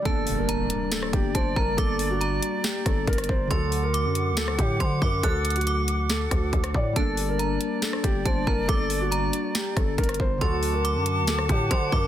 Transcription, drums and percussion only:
0.05 kick, closed hi-hat
0.27 open hi-hat
0.49 closed hi-hat
0.70 closed hi-hat
0.92 snare, closed hi-hat
1.03 cross-stick
1.13 kick, closed hi-hat
1.35 kick, closed hi-hat
1.56 kick
1.78 kick, closed hi-hat
1.99 open hi-hat
2.21 closed hi-hat
2.43 closed hi-hat
2.64 snare, closed hi-hat
2.86 kick, cross-stick, closed hi-hat
3.07 kick, closed hi-hat
3.13 closed hi-hat
3.18 cross-stick, closed hi-hat
3.24 closed hi-hat
3.29 kick
3.51 kick, closed hi-hat
3.72 open hi-hat
3.94 closed hi-hat
4.15 closed hi-hat
4.37 snare, closed hi-hat
4.48 cross-stick
4.59 kick, closed hi-hat
4.80 kick, closed hi-hat
5.02 kick
5.23 kick, closed hi-hat
5.45 closed hi-hat, open hi-hat
5.50 closed hi-hat
5.56 closed hi-hat
5.61 closed hi-hat
5.67 closed hi-hat
5.88 closed hi-hat
6.10 snare, closed hi-hat
6.31 kick, cross-stick, closed hi-hat
6.53 kick, closed hi-hat
6.64 cross-stick, closed hi-hat
6.74 kick
6.96 kick, closed hi-hat
7.17 open hi-hat
7.39 closed hi-hat
7.61 closed hi-hat
7.82 snare, closed hi-hat
7.93 cross-stick
8.04 kick, closed hi-hat
8.26 kick, closed hi-hat
8.47 kick
8.69 kick, closed hi-hat
8.90 open hi-hat
9.12 closed hi-hat
9.33 closed hi-hat
9.55 snare, closed hi-hat
9.77 kick, cross-stick, closed hi-hat
9.98 kick, closed hi-hat
10.04 closed hi-hat
10.09 cross-stick, closed hi-hat
10.14 closed hi-hat
10.20 kick
10.41 kick, closed hi-hat
10.63 open hi-hat
10.85 closed hi-hat
11.06 closed hi-hat
11.27 snare, closed hi-hat
11.39 cross-stick
11.49 kick, closed hi-hat
11.71 kick, closed hi-hat
11.92 kick

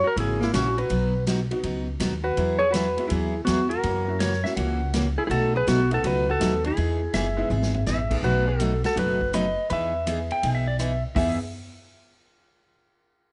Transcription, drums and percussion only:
0.17 ride
0.41 snare
0.54 snare, hi-hat pedal, ride
0.78 ride
0.90 ride
1.27 snare, hi-hat pedal, ride
1.51 ride
1.63 ride
2.00 snare, hi-hat pedal, ride
2.37 ride
2.74 snare, hi-hat pedal, ride
2.98 ride
3.10 ride
3.47 snare, hi-hat pedal, ride
3.71 ride
3.83 ride
4.20 snare, hi-hat pedal, ride
4.33 snare
4.45 snare
4.57 ride
4.94 snare, hi-hat pedal, ride
5.31 ride
5.67 snare, hi-hat pedal, ride
5.91 ride
6.04 ride
6.41 snare, hi-hat pedal, ride
6.64 ride
6.77 ride
7.13 snare, hi-hat pedal, ride
7.62 snare
7.74 floor tom
7.86 snare, hi-hat pedal
8.11 kick, crash
8.60 hi-hat pedal, ride
8.84 snare, ride
8.97 ride
9.21 kick
9.34 cross-stick, hi-hat pedal, ride
9.70 ride
10.07 hi-hat pedal, ride
10.30 ride
10.43 ride
10.79 cross-stick, hi-hat pedal, ride
11.16 kick, floor tom, open hi-hat

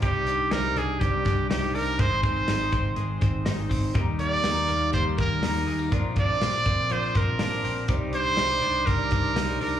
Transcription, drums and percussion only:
0.02 kick, hi-hat pedal, open hi-hat
0.27 hi-hat pedal, open hi-hat
0.51 snare, hi-hat pedal, open hi-hat
0.77 hi-hat pedal, open hi-hat
1.01 kick, hi-hat pedal, open hi-hat
1.25 kick, snare, hi-hat pedal, open hi-hat
1.51 snare, hi-hat pedal, open hi-hat
1.75 hi-hat pedal, open hi-hat
1.99 kick, hi-hat pedal, open hi-hat
2.23 kick, hi-hat pedal, open hi-hat
2.48 snare, hi-hat pedal, open hi-hat
2.72 kick, hi-hat pedal, open hi-hat
2.96 hi-hat pedal, open hi-hat
3.21 kick, hi-hat pedal, open hi-hat
3.46 snare, hi-hat pedal, open hi-hat
3.71 kick, hi-hat pedal, open hi-hat
3.95 kick, hi-hat pedal, open hi-hat
4.19 hi-hat pedal, open hi-hat
4.44 snare, hi-hat pedal, open hi-hat
4.69 hi-hat pedal, open hi-hat
4.93 kick, hi-hat pedal, open hi-hat
5.18 kick, hi-hat pedal, open hi-hat
5.43 snare, hi-hat pedal, open hi-hat
5.68 hi-hat pedal, open hi-hat
5.92 kick, hi-hat pedal, open hi-hat
6.16 kick, hi-hat pedal, open hi-hat
6.42 snare, hi-hat pedal, open hi-hat
6.66 kick, hi-hat pedal, open hi-hat
6.90 hi-hat pedal, open hi-hat
7.15 kick, snare, hi-hat pedal, open hi-hat
7.39 snare, hi-hat pedal, open hi-hat
7.64 hi-hat pedal, open hi-hat
7.88 kick, hi-hat pedal, open hi-hat
8.13 hi-hat pedal, open hi-hat
8.37 snare, hi-hat pedal, open hi-hat
8.62 hi-hat pedal, open hi-hat
8.87 kick, hi-hat pedal, open hi-hat
9.11 kick, hi-hat pedal, open hi-hat
9.36 snare, hi-hat pedal, open hi-hat
9.61 hi-hat pedal, open hi-hat

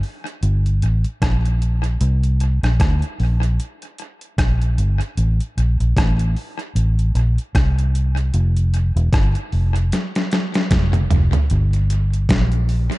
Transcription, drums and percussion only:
0.03 open hi-hat
0.27 closed hi-hat
0.43 closed hi-hat
0.66 closed hi-hat
0.82 closed hi-hat
1.04 closed hi-hat
1.22 kick, cross-stick, closed hi-hat
1.45 closed hi-hat
1.62 closed hi-hat
1.84 closed hi-hat
2.01 closed hi-hat
2.23 closed hi-hat
2.40 closed hi-hat
2.63 cross-stick, closed hi-hat
2.80 kick, cross-stick, closed hi-hat
3.02 closed hi-hat
3.20 open hi-hat
3.43 closed hi-hat
3.60 closed hi-hat
3.82 closed hi-hat
3.98 closed hi-hat
4.21 closed hi-hat
4.38 kick, cross-stick, closed hi-hat
4.62 closed hi-hat
4.78 closed hi-hat
5.01 closed hi-hat
5.17 closed hi-hat
5.40 closed hi-hat
5.58 closed hi-hat
5.80 closed hi-hat
5.97 kick, cross-stick, closed hi-hat
6.19 closed hi-hat
6.37 open hi-hat
6.59 closed hi-hat
6.76 closed hi-hat
6.99 closed hi-hat
7.15 closed hi-hat
7.38 closed hi-hat
7.55 kick, cross-stick, closed hi-hat
7.79 closed hi-hat
7.95 closed hi-hat
8.17 closed hi-hat
8.34 closed hi-hat
8.57 closed hi-hat
8.74 closed hi-hat
8.97 closed hi-hat
9.13 kick, cross-stick, closed hi-hat
9.35 closed hi-hat
9.52 open hi-hat
9.76 closed hi-hat
9.92 snare, closed hi-hat
10.15 snare, closed hi-hat
10.32 snare, closed hi-hat
10.54 snare, closed hi-hat
10.71 kick, snare, closed hi-hat
10.93 closed hi-hat, mid tom
11.10 closed hi-hat, floor tom
11.33 closed hi-hat, floor tom
11.50 closed hi-hat
11.73 closed hi-hat
11.90 closed hi-hat
12.14 closed hi-hat
12.29 kick, snare, closed hi-hat
12.52 closed hi-hat
12.69 open hi-hat
12.92 closed hi-hat

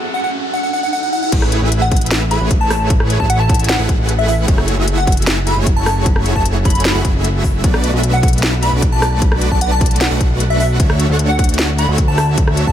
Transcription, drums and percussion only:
1.32 kick, closed hi-hat, crash
1.42 cross-stick
1.52 closed hi-hat
1.72 closed hi-hat
1.92 kick, closed hi-hat
1.96 closed hi-hat
2.01 closed hi-hat
2.06 closed hi-hat
2.11 snare, closed hi-hat
2.31 closed hi-hat
2.51 kick, closed hi-hat
2.70 cross-stick, open hi-hat
2.90 kick, closed hi-hat
3.00 cross-stick
3.10 closed hi-hat
3.20 kick
3.30 closed hi-hat
3.49 kick, closed hi-hat
3.54 closed hi-hat
3.59 closed hi-hat
3.64 closed hi-hat
3.69 snare, closed hi-hat
3.89 kick, closed hi-hat
4.09 closed hi-hat
4.28 open hi-hat
4.48 kick, closed hi-hat
4.58 cross-stick
4.68 closed hi-hat
4.88 closed hi-hat
5.07 kick, closed hi-hat
5.12 closed hi-hat
5.17 closed hi-hat
5.22 closed hi-hat
5.27 snare, closed hi-hat
5.47 closed hi-hat
5.66 kick, closed hi-hat
5.86 cross-stick, open hi-hat
6.06 kick, closed hi-hat
6.16 cross-stick
6.26 closed hi-hat
6.36 kick
6.45 closed hi-hat
6.65 kick, closed hi-hat
6.70 closed hi-hat
6.75 closed hi-hat
6.80 closed hi-hat
6.85 snare, closed hi-hat
7.05 kick, closed hi-hat
7.24 closed hi-hat
7.44 kick, open hi-hat
7.64 kick, closed hi-hat
7.74 cross-stick
7.84 closed hi-hat
8.03 closed hi-hat
8.23 kick, closed hi-hat
8.28 closed hi-hat
8.33 closed hi-hat
8.38 closed hi-hat
8.43 snare, closed hi-hat
8.63 closed hi-hat
8.82 kick, closed hi-hat
9.02 cross-stick, open hi-hat
9.22 kick, closed hi-hat
9.32 cross-stick
9.41 closed hi-hat
9.51 kick
9.61 closed hi-hat
9.81 kick, closed hi-hat
9.86 closed hi-hat
9.91 closed hi-hat
9.96 closed hi-hat
10.01 snare, closed hi-hat
10.20 kick, closed hi-hat
10.40 closed hi-hat
10.60 open hi-hat
10.80 kick, closed hi-hat
10.90 cross-stick
11.00 closed hi-hat
11.19 closed hi-hat
11.39 kick, closed hi-hat
11.44 closed hi-hat
11.49 closed hi-hat
11.54 closed hi-hat
11.59 snare, closed hi-hat
11.78 closed hi-hat
11.98 kick, closed hi-hat
12.18 cross-stick, open hi-hat
12.38 kick, closed hi-hat
12.47 cross-stick
12.57 closed hi-hat
12.67 kick

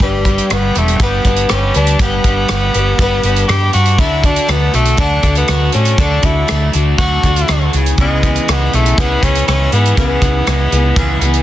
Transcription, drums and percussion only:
0.00 kick, closed hi-hat
0.25 kick, closed hi-hat
0.38 closed hi-hat
0.50 cross-stick, closed hi-hat
0.75 closed hi-hat
0.88 closed hi-hat
1.00 kick, closed hi-hat
1.25 kick, closed hi-hat
1.36 closed hi-hat
1.49 cross-stick, closed hi-hat
1.74 closed hi-hat
1.87 closed hi-hat
1.99 kick, closed hi-hat
2.24 kick, closed hi-hat
2.48 cross-stick, closed hi-hat
2.74 closed hi-hat
2.99 kick, closed hi-hat
3.23 closed hi-hat
3.36 closed hi-hat
3.49 cross-stick, closed hi-hat
3.73 closed hi-hat
3.86 closed hi-hat
3.98 kick, closed hi-hat
4.24 kick, closed hi-hat
4.36 closed hi-hat
4.49 cross-stick, closed hi-hat
4.74 closed hi-hat
4.85 closed hi-hat
4.97 kick, closed hi-hat
5.23 kick, closed hi-hat
5.35 closed hi-hat
5.48 cross-stick, closed hi-hat
5.72 closed hi-hat
5.85 closed hi-hat
5.98 kick, closed hi-hat
6.23 kick, closed hi-hat
6.48 cross-stick, closed hi-hat
6.73 closed hi-hat
6.98 kick, closed hi-hat
7.23 kick, closed hi-hat
7.36 closed hi-hat
7.48 cross-stick, closed hi-hat
7.73 closed hi-hat
7.86 closed hi-hat
7.98 kick, closed hi-hat
8.23 kick, closed hi-hat
8.36 closed hi-hat
8.48 cross-stick, closed hi-hat
8.73 closed hi-hat
8.86 closed hi-hat
8.98 kick, closed hi-hat
9.23 kick, closed hi-hat
9.35 closed hi-hat
9.48 cross-stick, closed hi-hat
9.72 closed hi-hat
9.86 closed hi-hat
9.97 kick, closed hi-hat
10.22 kick, closed hi-hat
10.47 cross-stick, closed hi-hat
10.72 closed hi-hat
10.96 kick, closed hi-hat
11.21 closed hi-hat
11.34 closed hi-hat

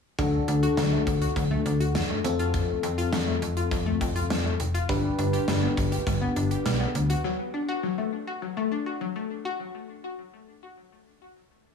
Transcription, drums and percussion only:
0.19 kick, closed hi-hat
0.48 closed hi-hat
0.63 closed hi-hat
0.77 snare, closed hi-hat
1.07 kick, closed hi-hat
1.22 closed hi-hat
1.36 kick, closed hi-hat
1.66 closed hi-hat
1.81 closed hi-hat
1.95 snare, closed hi-hat
2.25 closed hi-hat
2.39 closed hi-hat
2.54 kick, closed hi-hat
2.83 closed hi-hat
2.98 closed hi-hat
3.13 snare, closed hi-hat
3.42 closed hi-hat
3.57 closed hi-hat
3.71 kick, closed hi-hat
4.01 kick, closed hi-hat
4.16 closed hi-hat
4.30 snare, closed hi-hat
4.60 closed hi-hat
4.75 closed hi-hat
4.89 kick, closed hi-hat
5.19 closed hi-hat
5.34 closed hi-hat
5.48 snare, closed hi-hat
5.77 kick, closed hi-hat
5.92 closed hi-hat
6.07 kick, closed hi-hat
6.36 closed hi-hat
6.51 closed hi-hat
6.66 snare, closed hi-hat
6.95 closed hi-hat
7.10 closed hi-hat

